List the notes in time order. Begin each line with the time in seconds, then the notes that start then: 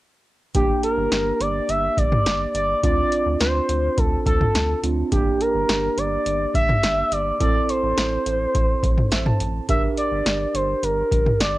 0.55 G1 A#3 D4 G4, kick, closed hi-hat
0.83 A#4, closed hi-hat
0.97 G1
1.12 G1, snare, closed hi-hat
1.41 G1 D5, closed hi-hat
1.69 G1 E5, closed hi-hat
1.97 G1 D5, kick, closed hi-hat
2.12 mid tom
2.26 G1, snare, closed hi-hat
2.55 G1 D5, closed hi-hat
2.83 D2 C4 D4 F4 D5, kick, closed hi-hat
3.12 closed hi-hat
3.26 D2
3.40 D2 C5, snare, closed hi-hat
3.69 D2, closed hi-hat
3.98 D2 A4, kick, closed hi-hat
4.26 D2 A4, kick, closed hi-hat
4.41 mid tom
4.55 D2, snare, closed hi-hat
4.83 D2 C4 D4 F4, closed hi-hat
5.12 G1 A#3 D4 G4, kick, closed hi-hat
5.41 A#4, closed hi-hat
5.55 G1
5.69 G1, snare, closed hi-hat
5.98 G1 D5, closed hi-hat
6.26 G1, closed hi-hat
6.54 G1 E5, kick, closed hi-hat
6.69 mid tom
6.83 G1, snare, closed hi-hat
7.12 G1 D5, closed hi-hat
7.40 A1 C4 E4 A4 D5, kick, closed hi-hat
7.69 C5, closed hi-hat
7.83 A1
7.98 A1, snare, closed hi-hat
8.26 A1, closed hi-hat
8.55 A1, kick, closed hi-hat
8.83 A1, kick, closed hi-hat
8.98 mid tom
9.12 A1 E5, snare, closed hi-hat
9.26 A5, mid tom
9.40 A1, closed hi-hat
9.69 G1 D4 G4 A#4 E5, kick, closed hi-hat
9.97 D5, closed hi-hat
10.12 G1
10.26 G1, snare, closed hi-hat
10.54 G1 C5, closed hi-hat
10.83 G1 A#4, closed hi-hat
11.12 G1, kick, closed hi-hat
11.26 mid tom
11.40 G1 D5, snare, closed hi-hat